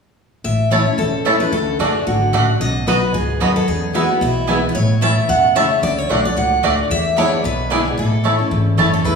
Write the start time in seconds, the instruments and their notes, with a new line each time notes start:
0.44 upright bass A1, steel-string acoustic guitar A2 E5
0.70 steel-string acoustic guitar E3 A3 C#4 E4 C#5, mandolin A3 E4 C#5 A5, five-string banjo A3 C#4 E4
0.86 steel-string acoustic guitar C#4 E4
0.98 upright bass E1, steel-string acoustic guitar E2 A4
1.25 steel-string acoustic guitar E3 A3 C#4 E4, mandolin A3 E4 C#5 A5, five-string banjo A3 C#4 E4
1.40 steel-string acoustic guitar C#4 E4 B4
1.52 upright bass D2, steel-string acoustic guitar D3 A4
1.79 upright bass F#1, steel-string acoustic guitar D3 A3 D4 F#4 G#4, mandolin A3 F#4 D5 F#5, five-string banjo A3 D4 F#4
2.07 upright bass G#1, steel-string acoustic guitar D3 F#4
2.33 upright bass A1, steel-string acoustic guitar C#3, mandolin A3 F#4 D5 F#5, five-string banjo A3 D4 F#4
2.60 upright bass B1, steel-string acoustic guitar B2 D#5
2.87 upright bass B1, steel-string acoustic guitar F#3 B3 D#4 F#4 B4, mandolin B3 F#4 D#5 B5, five-string banjo B3 D#4 F#4
3.14 upright bass C#2, steel-string acoustic guitar G#2 G#4
3.40 upright bass D#2, steel-string acoustic guitar F#2, mandolin B3 F#4 D#5 B5, five-string banjo B3 D#4 F#4
3.56 steel-string acoustic guitar A4
3.68 upright bass E2, steel-string acoustic guitar E2 G#4
3.93 steel-string acoustic guitar E3 G#3 B3 E4 F#4, mandolin B3 E4 B4 G#5, five-string banjo B3 E4
4.09 steel-string acoustic guitar B3 E4
4.21 upright bass B1, steel-string acoustic guitar B2 E4
4.47 steel-string acoustic guitar E3 G#3 B3 E4, mandolin B3 E4 B4 G#5, five-string banjo B3 E4
4.69 steel-string acoustic guitar B4
4.75 upright bass A1, steel-string acoustic guitar A2 C#5
5.01 steel-string acoustic guitar E3 A3 C#4 E4 E5, mandolin A3 E4 C#5 A5, five-string banjo A3 C#4 E4
5.29 upright bass E2, steel-string acoustic guitar B2 F#5
5.55 steel-string acoustic guitar C#3 E5, mandolin A3 E4 C#5 A5, five-string banjo A3 C#4 E4
5.83 upright bass D2, steel-string acoustic guitar D3 D5
5.98 steel-string acoustic guitar C#5
6.09 upright bass B1, steel-string acoustic guitar D3 A3 D4 F#4, mandolin A3 F#4 D5 F#5, five-string banjo A3 D4 F#4
6.25 steel-string acoustic guitar D5
6.36 upright bass C#2, steel-string acoustic guitar A2 F#5
6.63 upright bass D2, steel-string acoustic guitar D3 A3 D4 F#4, mandolin A3 F#4 D5 F#5, five-string banjo A3 D4 F#4
6.90 upright bass E2, steel-string acoustic guitar E2 E5
7.16 steel-string acoustic guitar D3 G#3 B3 E4 C#5, mandolin B3 E4 D5 G#5, five-string banjo B3 D4 E4
7.44 upright bass B1, steel-string acoustic guitar B2 B4
7.70 steel-string acoustic guitar D3 G#3 B3 E4 G#4, mandolin B3 E4 D5 G#5, five-string banjo B3 D4 E4
7.85 steel-string acoustic guitar B3 E4
7.98 upright bass A1, steel-string acoustic guitar A2 A4
8.23 steel-string acoustic guitar E3 A3 C#4 E4, mandolin A3 E4 C#5 A5, five-string banjo A3 C#4 E4
8.39 steel-string acoustic guitar C#4 E4
8.51 upright bass G#1, steel-string acoustic guitar E2
8.77 upright bass F#1, steel-string acoustic guitar E3 A3 C#4 E4, mandolin A3 E4 C#5 A5, five-string banjo A3 C#4 E4
8.94 steel-string acoustic guitar A4
9.04 steel-string acoustic guitar E2 B4, upright bass E2, five-string banjo E4